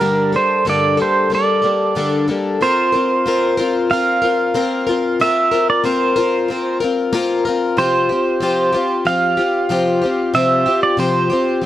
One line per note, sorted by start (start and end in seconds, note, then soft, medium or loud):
0.00 0.34 G2 medium
0.00 0.34 D3 medium
0.00 0.34 G3 medium
0.00 0.34 A#3 medium
0.00 0.33 D4 medium
0.00 0.38 A#4 medium
0.33 0.65 G3 soft
0.33 0.66 A#3 soft
0.33 0.66 D4 soft
0.33 0.66 A4 medium
0.33 0.66 C5 medium
0.65 0.98 G2 medium
0.65 0.99 D3 medium
0.65 0.99 G3 medium
0.65 0.98 A#3 medium
0.65 0.97 D4 medium
0.65 0.96 A4 medium
0.70 1.01 D5 medium
0.97 1.29 G3 soft
0.97 1.30 A#3 soft
0.97 1.31 D4 soft
0.97 1.31 A4 medium
1.02 1.31 C5 medium
1.30 1.63 G3 medium
1.30 1.63 A#3 medium
1.30 1.62 D4 medium
1.30 1.61 A4 medium
1.35 2.26 D5 medium
1.62 1.95 G3 soft
1.62 1.95 A#3 soft
1.62 1.96 D4 soft
1.62 1.96 A4 medium
1.95 2.28 G2 medium
1.95 2.29 D3 medium
1.95 2.29 G3 medium
1.95 2.29 A#3 medium
1.95 2.28 D4 medium
1.95 2.26 A4 medium
2.28 2.60 G3 soft
2.28 2.60 A#3 soft
2.28 2.61 D4 medium
2.28 2.61 A4 medium
2.61 2.93 A#3 medium
2.61 2.94 C4 medium
2.61 2.93 F4 medium
2.61 2.91 A#4 medium
2.61 3.95 C5 medium
2.92 3.25 C4 soft
2.92 3.26 F4 soft
2.92 3.25 A#4 medium
3.26 3.58 A#3 medium
3.26 3.59 C4 medium
3.26 3.58 F4 medium
3.26 3.56 A#4 medium
3.57 3.90 C4 medium
3.57 3.91 F4 medium
3.57 3.90 A#4 medium
3.90 4.22 A#3 medium
3.90 4.23 C4 medium
3.90 4.23 F4 medium
3.90 4.21 A#4 medium
3.90 5.21 F5 loud
4.22 4.54 C4 soft
4.22 4.55 F4 soft
4.22 4.55 A#4 medium
4.54 4.87 A#3 medium
4.54 4.87 C4 medium
4.54 4.88 F4 medium
4.54 4.85 A#4 medium
4.87 5.19 C4 soft
4.87 5.20 F4 medium
4.87 5.19 A#4 medium
5.20 5.52 A#3 medium
5.20 5.52 C4 medium
5.20 5.52 F4 medium
5.20 5.50 A#4 loud
5.20 5.69 E5 loud
5.51 5.83 C4 soft
5.51 5.84 F4 soft
5.51 5.84 A#4 medium
5.70 5.84 D5 medium
5.84 6.16 A#3 medium
5.84 6.16 C4 medium
5.84 6.17 F4 medium
5.84 6.15 A#4 medium
5.84 6.77 C5 medium
6.16 6.49 C4 soft
6.16 6.49 F4 medium
6.16 6.48 A#4 medium
6.48 6.81 A#3 medium
6.48 6.81 C4 medium
6.48 6.81 F4 medium
6.48 6.79 A#4 medium
6.80 7.12 C4 medium
6.80 7.13 F4 medium
6.80 7.13 A#4 medium
7.13 7.45 A#3 loud
7.13 7.45 C4 medium
7.13 7.46 F4 loud
7.13 7.44 A#4 loud
7.45 7.77 C4 medium
7.45 7.77 F4 medium
7.45 7.77 A#4 medium
7.77 8.09 C3 medium
7.77 8.10 F3 medium
7.77 8.10 C4 medium
7.77 8.10 F4 medium
7.77 8.08 G4 medium
7.77 9.10 C5 loud
8.09 8.41 C4 soft
8.09 8.41 F4 soft
8.09 8.41 G4 medium
8.40 8.73 C3 medium
8.40 8.74 F3 medium
8.40 8.74 C4 medium
8.40 8.73 F4 medium
8.40 8.71 G4 medium
8.72 9.05 C4 medium
8.72 9.06 F4 medium
8.72 9.05 G4 medium
9.05 9.38 F3 medium
9.05 9.38 C4 medium
9.05 9.38 F4 medium
9.05 9.36 G4 medium
9.05 10.34 F5 loud
9.37 9.70 C4 soft
9.37 9.70 F4 medium
9.37 9.70 G4 medium
9.69 10.02 C3 medium
9.69 10.02 F3 medium
9.69 10.02 C4 medium
9.69 10.03 F4 medium
9.69 10.00 G4 medium
10.02 10.34 C4 medium
10.02 10.34 F4 medium
10.02 10.34 G4 medium
10.34 10.66 C3 medium
10.34 10.66 F3 medium
10.34 10.67 C4 medium
10.34 10.66 F4 medium
10.34 10.65 G4 medium
10.34 10.83 E5 loud
10.66 10.97 C4 soft
10.66 10.97 F4 medium
10.66 10.98 G4 medium
10.83 10.98 D5 medium
10.97 11.30 C3 medium
10.97 11.30 F3 medium
10.97 11.31 C4 medium
10.97 11.31 F4 medium
10.97 11.29 G4 medium
10.97 11.66 C5 medium
11.30 11.62 C4 soft
11.30 11.63 F4 medium
11.30 11.62 G4 medium
11.62 11.66 F3 medium